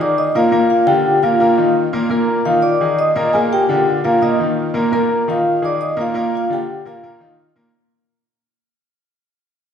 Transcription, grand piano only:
0.00 0.28 D#3 medium
0.00 0.29 D#4 medium
0.00 0.28 G#4 medium
0.35 0.49 A#2 medium
0.35 0.49 A#3 medium
0.35 0.50 A#4 medium
0.52 0.81 A#2 medium
0.52 0.81 A#3 medium
0.52 0.81 A#4 loud
0.87 1.16 D3 medium
0.87 1.16 D4 medium
0.87 1.17 F4 medium
1.23 1.37 A#2 medium
1.23 1.37 A#3 medium
1.23 1.37 A#4 medium
1.40 1.54 A#2 medium
1.40 1.55 A#3 medium
1.40 1.55 A#4 medium
1.58 1.86 D#3 medium
1.58 1.86 D#4 medium
1.58 1.87 F4 medium
1.93 2.07 A#2 loud
1.93 2.07 A#3 medium
1.93 2.08 A#4 medium
2.09 2.39 A#2 medium
2.09 2.39 A#3 medium
2.09 2.39 A#4 medium
2.46 2.74 D#3 medium
2.46 2.74 D#4 medium
2.46 2.75 F4 medium
2.81 3.10 D#3 medium
2.81 3.10 D#4 medium
2.81 3.10 G#4 medium
3.16 3.30 A#2 medium
3.16 3.30 A#3 loud
3.16 3.31 A#4 loud
3.35 3.63 A#2 medium
3.35 3.63 A#3 loud
3.35 3.63 A#4 medium
3.69 3.98 D3 medium
3.69 3.98 D4 medium
3.69 3.98 F4 medium
4.04 4.19 A#2 medium
4.04 4.19 A#3 medium
4.04 4.19 A#4 medium
4.22 4.36 A#2 medium
4.22 4.36 A#3 medium
4.22 4.37 A#4 medium
4.39 4.68 D#3 medium
4.39 4.68 D#4 medium
4.39 4.69 F4 medium
4.74 4.89 A#2 medium
4.74 4.89 A#3 loud
4.74 4.89 A#4 medium
4.92 5.21 A#2 medium
4.92 5.21 A#3 medium
4.92 5.21 A#4 medium
5.28 5.56 D#3 medium
5.28 5.57 D#4 medium
5.28 5.57 F4 medium
5.62 5.91 D#3 medium
5.62 5.91 D#4 medium
5.62 5.91 G#4 medium
5.97 6.12 A#2 medium
5.97 6.11 A#3 medium
5.97 6.12 A#4 medium
6.14 6.43 A#2 loud
6.14 6.44 A#3 loud
6.14 6.44 A#4 loud
6.50 6.79 D3 medium
6.50 6.79 D4 medium
6.50 6.79 F4 medium
6.85 7.00 A#2 medium
6.85 7.00 A#3 medium
6.85 7.00 A#4 medium
7.03 7.18 A#2 medium
7.03 7.18 A#3 medium
7.03 7.18 A#4 medium
7.20 7.49 D#3 medium
7.20 7.50 D#4 medium
7.20 7.50 F4 medium
7.56 7.70 A#2 loud
7.56 7.71 A#3 medium
7.56 7.71 A#4 medium

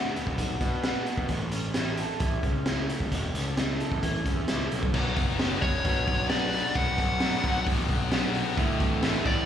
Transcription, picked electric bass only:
0.00 0.14 D2 medium
0.27 0.36 B1 medium
0.38 0.56 B1 medium
0.61 1.06 B2 medium
1.17 1.27 B2 medium
1.29 2.01 A1 medium
2.20 2.38 A1 medium
2.43 2.88 C#2 medium
3.00 3.09 G1 medium
3.11 3.30 E1 medium
3.34 3.79 C#2 medium
3.91 4.00 A1 medium
4.03 4.21 A1 medium
4.26 4.46 E2 medium
4.49 4.69 C#2 medium
4.71 4.92 B1 medium
4.94 5.12 B1 medium
5.16 5.53 F#1 medium
5.62 5.80 F#1 medium
5.85 6.03 B2 medium
6.08 6.61 B1 medium
6.75 6.94 B1 medium
6.98 7.34 B1 medium
7.44 7.62 B1 medium
7.67 7.85 A1 medium
7.89 8.43 B1 medium
8.57 8.75 D2 medium
8.80 9.16 A1 medium
9.25 9.43 A1 medium

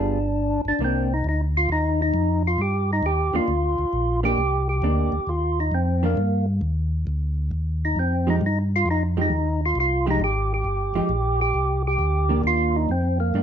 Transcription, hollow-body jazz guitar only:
0.00 0.17 G3 medium
0.00 0.17 B3 soft
0.00 0.18 F4 medium
0.00 0.18 G#4 medium
0.80 1.07 D#3 soft
0.80 1.07 A#3 medium
0.80 1.08 D4 medium
3.34 3.47 D#3 medium
3.34 3.48 A#3 medium
3.34 3.48 D4 medium
4.23 4.37 D#3 medium
4.23 4.37 A#3 medium
4.23 4.37 D4 medium
4.83 5.10 D#3 soft
4.83 5.11 A#3 medium
4.83 5.11 D4 medium
6.03 6.16 D#3 medium
6.03 6.17 A#3 medium
6.03 6.17 D4 medium
8.27 8.40 F3 medium
8.27 8.41 G#3 medium
8.27 8.41 D#4 medium
8.27 8.41 G4 soft
9.17 9.30 F3 medium
9.17 9.30 G#3 medium
9.17 9.30 D#4 medium
9.17 9.30 G4 medium
10.06 10.19 F3 medium
10.06 10.20 G#3 medium
10.06 10.20 D#4 medium
10.06 10.20 G4 medium
10.95 11.09 F3 medium
10.95 11.09 G#3 medium
10.95 11.09 D#4 medium
10.95 11.09 G4 medium
12.29 12.86 D#3 medium
12.29 12.87 A#3 medium
12.29 12.87 D4 medium
13.35 13.43 D#3 soft
13.35 13.43 A#3 medium
13.35 13.43 D4 medium

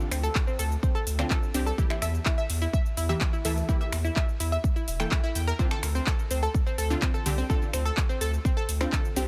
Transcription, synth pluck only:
0.00 1.16 D3 medium
0.00 1.16 C4 medium
0.00 1.16 D4 medium
0.00 1.16 F4 loud
1.19 1.52 D3 medium
1.19 1.52 C4 medium
1.19 1.52 D4 medium
1.19 1.52 F4 loud
1.54 1.75 C4 medium
1.54 1.75 D4 medium
1.54 1.75 G4 loud
1.78 3.06 E3 medium
1.78 3.06 A#3 medium
1.78 3.06 E4 medium
1.78 3.06 G4 loud
3.09 3.42 E3 medium
3.09 3.42 A#3 medium
3.09 3.42 E4 medium
3.09 3.42 G4 loud
3.45 3.66 E3 medium
3.45 3.66 A#3 medium
3.45 3.66 E4 medium
3.45 3.66 A4 loud
3.69 4.97 E3 medium
3.69 4.97 A#3 medium
3.69 4.97 E4 medium
3.69 4.97 G4 loud
5.00 5.56 E3 medium
5.00 5.56 A#3 medium
5.00 5.56 E4 medium
5.00 5.56 A4 medium
5.59 6.87 D3 medium
5.59 6.87 C4 medium
5.59 6.87 D4 medium
5.59 6.87 F4 loud
6.90 7.23 D3 medium
6.90 7.23 C4 medium
6.90 7.23 D4 medium
6.90 7.23 F4 loud
7.26 7.47 D3 loud
7.26 7.47 C4 medium
7.26 7.47 D4 medium
7.26 7.47 G4 loud
7.50 8.78 D3 medium
7.50 8.78 C4 medium
7.50 8.78 D4 medium
7.50 8.78 F4 loud
8.81 9.14 D3 medium
8.81 9.14 C4 medium
8.81 9.14 D4 medium
8.81 9.14 F4 loud
9.16 9.28 C4 loud
9.16 9.28 D4 medium
9.16 9.28 G4 loud

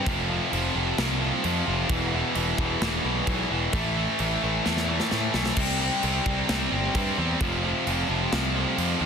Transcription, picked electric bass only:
0.06 0.39 F1 loud
0.52 0.69 F1 medium
0.75 0.92 F1 medium
0.98 1.30 C2 loud
1.45 1.61 F2 medium
1.68 1.84 F1 loud
1.90 2.22 E1 loud
2.36 2.52 E1 medium
2.58 2.75 E1 medium
2.82 2.98 E1 loud
3.04 3.20 B1 medium
3.27 3.43 B1 medium
3.51 3.67 E1 medium
3.73 4.05 A1 loud
4.20 4.36 A1 loud
4.43 4.59 A1 medium
4.66 4.98 E2 medium
5.12 5.28 A2 medium
5.34 5.50 B1 medium
5.57 5.89 C2 medium
6.04 6.19 C2 medium
6.26 6.42 C2 medium
6.50 6.65 C2 medium
6.72 6.88 G1 medium
6.95 7.11 G2 medium
7.18 7.34 E2 loud
7.41 7.72 F1 loud
7.87 8.03 F1 medium
8.09 8.25 F1 medium
8.33 8.64 C2 medium
8.78 8.94 F2 medium
9.01 9.06 D#2 medium

